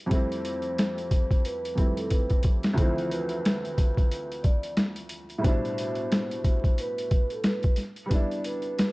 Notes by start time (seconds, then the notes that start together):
0.06 F2 G3
0.11 A3 C4 C5, kick, closed hi-hat
0.16 E4
0.32 closed hi-hat
0.45 closed hi-hat
0.62 closed hi-hat
0.78 snare, closed hi-hat
0.98 closed hi-hat
1.11 kick, closed hi-hat
1.31 kick, closed hi-hat
1.45 B4, closed hi-hat
1.65 closed hi-hat
1.75 F2 G3 A3 C4, kick, closed hi-hat
1.80 E4
1.97 A4, closed hi-hat
2.10 B4, kick, closed hi-hat
2.30 kick, closed hi-hat
2.43 kick, closed hi-hat
2.63 snare, closed hi-hat
2.74 D2 E3 C5
2.78 A3 C4, kick, closed hi-hat
2.82 F3 E4
2.98 closed hi-hat
3.11 B4, closed hi-hat
3.29 closed hi-hat
3.45 snare, closed hi-hat
3.65 closed hi-hat
3.78 kick, closed hi-hat
3.97 kick, closed hi-hat
4.11 closed hi-hat
4.32 closed hi-hat
4.43 D5, kick, closed hi-hat
4.63 closed hi-hat
4.77 snare, closed hi-hat
4.96 closed hi-hat
5.09 closed hi-hat
5.30 closed hi-hat
5.38 A2 G3
5.43 B2 D4 C5, kick, closed hi-hat
5.48 E4
5.65 closed hi-hat
5.78 closed hi-hat
5.95 closed hi-hat
6.12 snare, closed hi-hat
6.31 closed hi-hat
6.44 kick, closed hi-hat
6.64 kick, closed hi-hat
6.78 B4, closed hi-hat
6.98 closed hi-hat
7.11 kick, closed hi-hat
7.30 A4, closed hi-hat
7.44 B4, snare, closed hi-hat
7.63 kick, closed hi-hat
7.76 snare, closed hi-hat
7.96 closed hi-hat
8.06 G3 B3
8.11 D4 D5, kick, closed hi-hat
8.15 E4
8.31 closed hi-hat
8.44 B4, closed hi-hat
8.62 closed hi-hat
8.79 snare, closed hi-hat